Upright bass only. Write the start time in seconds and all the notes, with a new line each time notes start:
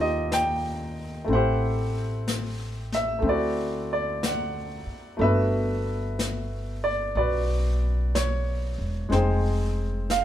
Already playing: D#2
1.28 A1
3.22 D2
4.86 muted upright bass stroke
5.19 G1
7.15 B1
8.78 E1
9.10 F1